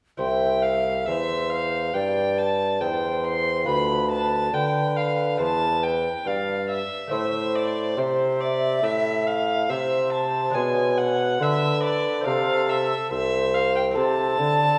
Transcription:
0.17 1.03 C2 medium
0.17 3.62 E4 medium
0.17 3.62 C5 medium
0.17 1.03 E5 medium
0.17 0.64 G5 medium
0.62 1.07 F5 medium
1.06 1.93 E2 medium
1.06 1.91 E2 medium
1.06 1.93 C5 medium
1.06 1.51 E5 medium
1.49 1.95 F5 medium
1.93 2.83 G2 medium
1.93 2.77 G2 medium
1.93 2.83 D5 medium
1.93 2.40 G5 medium
2.38 2.82 A5 medium
2.81 3.67 E2 medium
2.81 3.63 E2 medium
2.81 3.66 C5 medium
2.81 3.25 G5 medium
3.24 3.67 C6 medium
3.64 4.49 D2 medium
3.64 4.52 D2 medium
3.64 5.34 F4 medium
3.64 5.35 B4 medium
3.64 4.51 B4 medium
3.64 4.10 B5 medium
4.11 4.55 A5 loud
4.53 5.38 D3 medium
4.53 5.36 D3 medium
4.53 6.23 B4 medium
4.53 4.98 G5 loud
4.96 5.39 F5 medium
5.37 6.09 E2 medium
5.37 6.22 E2 medium
5.37 7.07 E4 medium
5.37 7.07 C5 medium
5.37 5.84 A5 loud
5.83 6.28 G5 medium
6.25 6.80 G2 medium
6.25 6.83 G2 medium
6.25 6.83 D5 medium
6.25 6.69 F5 medium
6.69 7.11 E5 medium
7.07 10.49 A3 medium
7.07 10.50 E4 medium
7.07 10.51 C5 medium
7.07 7.57 E5 medium
7.12 7.93 A2 medium
7.12 7.99 C5 medium
7.55 7.99 D5 medium
7.97 8.79 C3 medium
7.97 8.81 C3 medium
7.97 8.42 C5 medium
7.97 9.69 E5 medium
8.40 8.86 D5 medium
8.83 9.71 A2 medium
8.83 9.66 A2 medium
8.83 9.29 E5 medium
9.27 9.71 F5 medium
9.70 10.51 C3 medium
9.70 10.55 C3 medium
9.70 10.56 C5 medium
9.70 10.12 E5 medium
10.12 10.56 A5 medium
10.50 12.19 G#3 medium
10.50 12.20 D4 medium
10.50 12.21 G#4 medium
10.54 11.36 B2 medium
10.54 11.39 B2 medium
10.54 11.41 C#5 medium
10.54 10.99 G#5 medium
10.98 11.44 F#5 loud
11.39 12.22 D3 medium
11.39 12.24 D3 medium
11.39 12.26 B4 medium
11.39 11.82 E5 loud
11.83 12.25 D5 loud
12.21 13.90 C4 medium
12.21 13.90 E4 medium
12.21 13.91 A4 medium
12.25 13.07 C3 medium
12.25 12.94 C3 medium
12.25 13.12 A4 medium
12.25 12.70 F5 loud
12.69 13.11 E5 medium
13.11 13.95 C2 medium
13.11 13.95 C5 medium
13.11 13.55 E5 loud
13.54 13.75 F5 loud
13.76 13.84 G5 medium
13.91 14.79 C4 medium
13.91 14.79 E4 medium
13.91 14.79 A4 medium
13.96 14.34 C3 medium
13.96 14.40 C3 medium
13.96 14.79 A4 medium
13.96 14.79 A5 loud
14.38 14.79 D3 medium
14.38 14.77 D3 medium

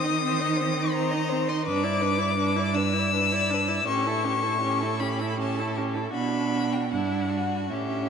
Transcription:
0.00 1.68 D#3 medium
0.00 0.94 D#6 loud
0.04 0.22 D#4 medium
0.04 0.22 D#5 soft
0.22 0.42 C4 medium
0.22 0.42 C5 medium
0.41 0.62 D#4 medium
0.41 0.58 D#5 medium
0.57 0.75 C5 medium
0.61 0.79 C4 medium
0.73 0.90 D#5 medium
0.78 0.95 D#4 medium
0.91 1.12 C5 medium
0.91 1.50 A#5 loud
0.96 1.15 C4 medium
1.11 1.33 D#4 medium
1.11 1.30 D#5 medium
1.29 1.51 C4 medium
1.29 1.50 C5 medium
1.48 1.66 D#4 medium
1.48 1.65 D#5 medium
1.48 1.65 C6 medium
1.65 3.88 G2 medium
1.65 1.86 D4 medium
1.65 1.85 B4 medium
1.65 2.77 D6 loud
1.84 2.03 E4 medium
1.84 2.03 D5 medium
2.01 2.19 D4 medium
2.01 2.22 B4 medium
2.18 2.36 E4 medium
2.18 2.38 D5 medium
2.37 2.58 D4 medium
2.37 2.61 B4 medium
2.56 2.76 E4 medium
2.56 2.79 D5 soft
2.74 2.95 D4 medium
2.74 3.01 B4 medium
2.74 3.87 E6 loud
2.94 3.13 E4 medium
2.99 3.15 D5 medium
3.13 3.33 D4 medium
3.13 3.36 B4 medium
3.32 3.52 E4 soft
3.32 3.55 D5 medium
3.51 3.70 D4 medium
3.51 3.70 B4 medium
3.69 3.87 E4 soft
3.69 3.87 D5 medium
3.87 6.11 A2 medium
3.87 4.08 C#4 medium
3.87 4.08 G4 medium
3.87 5.01 C#6 loud
4.06 4.26 E4 medium
4.06 4.25 A4 medium
4.24 4.45 C#4 soft
4.24 4.44 G4 medium
4.42 4.62 E4 medium
4.42 4.60 A4 soft
4.60 4.84 C#4 medium
4.60 4.81 G4 soft
4.79 5.02 E4 soft
4.79 5.02 A4 soft
4.99 5.23 C#4 medium
4.99 5.21 G4 soft
4.99 5.39 B5 medium
5.19 5.40 E4 medium
5.19 5.36 A4 soft
5.37 5.61 C#4 medium
5.37 5.58 G4 soft
5.37 5.77 A5 medium
5.56 5.79 E4 soft
5.56 5.78 A4 medium
5.76 5.97 C#4 soft
5.76 5.95 G4 soft
5.93 6.14 E4 soft
5.93 6.12 A4 soft
6.13 6.94 B2 medium
6.13 6.87 D4 medium
6.13 6.87 F#4 medium
6.13 6.74 B5 medium
6.72 6.92 G5 medium
6.91 7.73 G2 medium
6.91 7.70 D4 medium
6.91 7.31 E4 medium
6.91 7.71 F#5 medium
7.30 7.74 F#4 soft
7.70 8.09 A2 medium
7.70 8.09 C#4 medium
7.70 8.09 G4 soft
7.70 8.09 E5 medium

